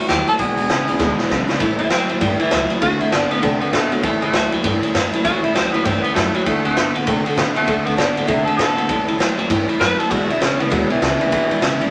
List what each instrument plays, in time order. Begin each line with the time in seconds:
0.08 upright bass D#2, clean electric guitar A2 F#3, steel-string acoustic guitar E3 G3 C#4 E4, tenor saxophone G4, snare, closed hi-hat
0.27 clean electric guitar A2 F#3, steel-string acoustic guitar G3 C#4 E4, tenor saxophone A4, closed hi-hat
0.37 upright bass E1, steel-string acoustic guitar E2 B2 E3 G#3 D4 E4, clean electric guitar E2 B2, tenor saxophone G#4, kick, closed hi-hat
0.56 upright bass E1, clean electric guitar E2 B2, steel-string acoustic guitar E3 G#3 D4 E4, closed hi-hat
0.68 upright bass A1, clean electric guitar E2 C#3, steel-string acoustic guitar E3 G#3 D4 E4, snare, closed hi-hat
0.88 upright bass B1, clean electric guitar E2 C#3, steel-string acoustic guitar E3 G#3 D4 E4, closed hi-hat
0.99 upright bass D2, steel-string acoustic guitar E2 B2 E3 G#3 D4 E4, clean electric guitar E2 B2, kick, snare
1.17 clean electric guitar E2 B2, steel-string acoustic guitar E3 G#3 D4 E4, snare
1.29 upright bass B1, clean electric guitar E2 C#3, steel-string acoustic guitar E3 G#3 D4 E4, snare
1.47 clean electric guitar E2 C#3, steel-string acoustic guitar E3 G#3 D4 E4, muted upright bass stroke, snare
1.59 upright bass A1, steel-string acoustic guitar A2 E3 G3 C#4 E4, clean electric guitar A2 E3, kick, ride
1.78 upright bass A1, clean electric guitar A2 E3, steel-string acoustic guitar G3 C#4 E4, tenor saxophone E4, ride
1.90 upright bass D2, clean electric guitar A2 F#3, steel-string acoustic guitar E3 G3 C#4 E4, tenor saxophone C4, snare, ride
2.08 upright bass E2, clean electric guitar A2 F#3, steel-string acoustic guitar G3 C#4 E4, ride
2.21 upright bass G2, steel-string acoustic guitar A2 E3 G3 C#4 E4, clean electric guitar A2 E3, tenor saxophone G3, kick, ride
2.39 clean electric guitar A2 E3, tenor saxophone E3, steel-string acoustic guitar G3 C#4 E4, ride
2.50 upright bass C#2, clean electric guitar A2 F#3, steel-string acoustic guitar E3 G3 C#4 E4, snare, ride
2.70 clean electric guitar A2 F#3, steel-string acoustic guitar G3 C#4 E4, muted upright bass stroke, ride
2.81 upright bass D2, steel-string acoustic guitar D3 A3 C4 F#4, clean electric guitar D3 A3, tenor saxophone F#4, kick, ride
2.99 upright bass D2, clean electric guitar D3 A3, steel-string acoustic guitar A3 C4 F#4, tenor saxophone E4, ride
3.12 upright bass G2, steel-string acoustic guitar D3 A3 C4 F#4, clean electric guitar D3 B3, tenor saxophone D4, snare, ride
3.30 upright bass A2, clean electric guitar D3 B3, steel-string acoustic guitar A3 C4 F#4, tenor saxophone B3, ride
3.42 upright bass C3, clean electric guitar D3 A3, steel-string acoustic guitar D3 A3 C4 F#4, tenor saxophone D4, kick, ride
3.60 clean electric guitar D3 A3, steel-string acoustic guitar A3 C4 F#4, tenor saxophone B3, muted upright bass stroke, ride
3.72 upright bass B2, steel-string acoustic guitar D3 A3 C4 F#4, clean electric guitar D3 B3, tenor saxophone A3, snare, ride
3.90 clean electric guitar D3 B3, tenor saxophone F#3, steel-string acoustic guitar A3 C4 F#4, muted upright bass stroke, ride
4.03 upright bass A1, steel-string acoustic guitar A2 E3 G3 C#4 E4, clean electric guitar A2 E3, tenor saxophone A3, kick, ride
4.21 upright bass A1, clean electric guitar A2 E3, steel-string acoustic guitar G3 C#4 E4, tenor saxophone A3, ride
4.33 upright bass D2, clean electric guitar A2 F#3, steel-string acoustic guitar E3 G3 C#4 E4, snare, ride
4.52 upright bass E2, clean electric guitar A2 F#3, steel-string acoustic guitar G3 C#4 E4, ride
4.64 upright bass G2, steel-string acoustic guitar A2 E3 G3 C#4 E4, clean electric guitar A2 E3, kick, ride
4.81 clean electric guitar A2 E3, steel-string acoustic guitar G3 C#4 E4, ride
4.94 upright bass F#2, clean electric guitar A2 F#3, steel-string acoustic guitar E3 G3 C#4 E4, snare, ride
5.12 clean electric guitar A2 F#3, steel-string acoustic guitar G3 C#4 E4, muted upright bass stroke, ride
5.24 upright bass A1, steel-string acoustic guitar A2 E3 G3 C#4 E4, clean electric guitar A2 E3, tenor saxophone F#4, kick, ride
5.42 upright bass A1, clean electric guitar A2 E3, steel-string acoustic guitar G3 C#4 E4, tenor saxophone E4, ride
5.54 upright bass D2, clean electric guitar A2 F#3, steel-string acoustic guitar E3 G3 C#4 E4, tenor saxophone C4, snare, ride
5.72 upright bass E2, clean electric guitar A2 F#3, steel-string acoustic guitar G3 C#4 E4, tenor saxophone B3, ride
5.85 upright bass G2, steel-string acoustic guitar A2 E3 G3 C#4 E4, clean electric guitar A2 E3, tenor saxophone C4, kick, ride
6.02 clean electric guitar A2 E3, steel-string acoustic guitar G3 C#4 E4, tenor saxophone B3, ride
6.14 upright bass F#2, clean electric guitar A2 F#3, steel-string acoustic guitar E3 G3 C#4 E4, tenor saxophone A3, snare, ride
6.34 clean electric guitar A2 F#3, tenor saxophone F#3, steel-string acoustic guitar G3 C#4 E4, muted upright bass stroke, ride
6.46 upright bass D2, steel-string acoustic guitar D3 A3 C4 F#4, clean electric guitar D3 A3, tenor saxophone A3, kick, ride
6.64 upright bass D2, clean electric guitar D3 A3, tenor saxophone A3, steel-string acoustic guitar A3 C4 F#4, ride
6.76 upright bass G2, steel-string acoustic guitar D3 A3 C4 F#4, clean electric guitar D3 B3, snare, ride
6.95 upright bass A2, clean electric guitar D3 B3, steel-string acoustic guitar A3 C4 F#4, ride
7.06 upright bass C3, steel-string acoustic guitar D3 A3 C4 F#4, clean electric guitar D3 A3, kick, ride
7.25 clean electric guitar D3 A3, steel-string acoustic guitar A3 C4 F#4, muted upright bass stroke, ride
7.35 upright bass B2, steel-string acoustic guitar D3 A3 C4 F#4, clean electric guitar D3 B3, snare, ride
7.54 clean electric guitar D3 B3, steel-string acoustic guitar A3 C4 F#4, tenor saxophone A3, muted upright bass stroke, ride
7.66 upright bass D2, steel-string acoustic guitar D3 A3 C4 F#4, clean electric guitar D3 A3, kick, ride
7.84 upright bass D2, clean electric guitar D3 A3, steel-string acoustic guitar A3 C4 F#4, tenor saxophone B3, ride
7.96 upright bass G2, steel-string acoustic guitar D3 A3 C4 F#4, clean electric guitar D3 B3, tenor saxophone D4, snare, ride
8.16 upright bass A2, clean electric guitar D3 B3, steel-string acoustic guitar A3 C4 F#4, ride
8.26 upright bass C3, steel-string acoustic guitar D3 A3 C4 F#4, clean electric guitar D3 A3, tenor saxophone E4, kick, ride
8.45 clean electric guitar D3 A3, steel-string acoustic guitar A3 C4 F#4, tenor saxophone A4, muted upright bass stroke, ride
8.57 upright bass B2, steel-string acoustic guitar D3 A3 C4 F#4, clean electric guitar D3 B3, tenor saxophone A4, snare, ride
8.77 clean electric guitar D3 B3, steel-string acoustic guitar A3 C4 F#4, muted upright bass stroke, ride
8.88 upright bass A1, steel-string acoustic guitar A2 E3 G3 C#4 E4, clean electric guitar A2 E3, kick, ride
9.07 upright bass A1, clean electric guitar A2 E3, steel-string acoustic guitar G3 C#4 E4, ride
9.18 upright bass D2, clean electric guitar A2 F#3, steel-string acoustic guitar E3 G3 C#4 E4, snare, ride
9.37 upright bass E2, clean electric guitar A2 F#3, steel-string acoustic guitar G3 C#4 E4, ride
9.50 upright bass G2, steel-string acoustic guitar A2 E3 G3 C#4 E4, clean electric guitar A2 E3, kick, ride
9.68 clean electric guitar A2 E3, steel-string acoustic guitar G3 C#4 E4, ride
9.80 upright bass F#2, clean electric guitar A2 F#3, steel-string acoustic guitar E3 G3 C#4 E4, tenor saxophone B4, snare, ride
9.98 clean electric guitar A2 F#3, steel-string acoustic guitar G3 C#4 E4, tenor saxophone A4, ride
10.10 upright bass E1, steel-string acoustic guitar E2 B2 E3 G#3 D4 E4, clean electric guitar E2 B2, tenor saxophone F#4, kick, ride
10.29 upright bass E1, clean electric guitar E2 B2, steel-string acoustic guitar E3 G#3 D4 E4, tenor saxophone E4, ride
10.40 upright bass A1, clean electric guitar E2 C#3, steel-string acoustic guitar E3 G#3 D4 E4, tenor saxophone C#4, snare, ride
10.59 upright bass B1, clean electric guitar E2 C#3, steel-string acoustic guitar E3 G#3 D4 E4, tenor saxophone B3, ride
10.70 upright bass D2, steel-string acoustic guitar E2 B2 E3 G#3 D4 E4, clean electric guitar E2 B2, tenor saxophone F#3, kick, ride
10.90 clean electric guitar E2 B2, tenor saxophone E3, steel-string acoustic guitar E3 G#3 D4 E4, muted upright bass stroke, ride
11.01 upright bass C#2, clean electric guitar E2 C#3, steel-string acoustic guitar E3 G#3 D4 E4, tenor saxophone E3, snare, ride
11.20 clean electric guitar E2 C#3, steel-string acoustic guitar E3 G#3 D4 E4, ride
11.31 upright bass E1, steel-string acoustic guitar E2 B2 E3 G#3 D4 E4, clean electric guitar E2 B2, kick, ride
11.49 upright bass E1, clean electric guitar E2 B2, steel-string acoustic guitar E3 G#3 D4 E4, ride
11.61 upright bass A1, clean electric guitar E2 C#3, steel-string acoustic guitar E3 G#3 D4 E4, snare, ride
11.79 upright bass B1, clean electric guitar E2 C#3, steel-string acoustic guitar E3 G#3 D4 E4, ride